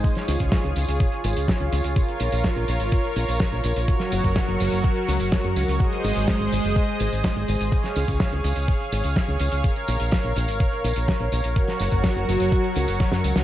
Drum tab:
HH |xxxxxxxxxxxxxxxx|xxxxxxxxxxxxxxxx|xxxxxxxxxxxxxxxx|xxxxxxxxxxxxxxxx|
TB |x-xxx-xxx-xx--xx|x-xxx-xxx-xx--xx|--x-x-xx--xxx-xx|x-xxx-xxx-xx--xx|
SD |-o--o-------o---|----o-------o---|-o--o-------o---|----o-------o---|
BD |o--oo---o---o---|o---o---o---o---|o--oo---o---o---|o---o---o---o---|

HH |xxxxxxxxxxxxxxxx|xxxxxxxxxxxxxxxx|xxxxxxxxxxxxxxxx|
TB |x-xxx-xx--xx--xx|x-xx--xxx-xxx-xx|x-xxx-xxx-xx--xx|
SD |-o--o-------o---|----o-------o---|-o--o-------oo-o|
BD |o--oo---o---o---|o---o---o---o---|o--oo---o---o---|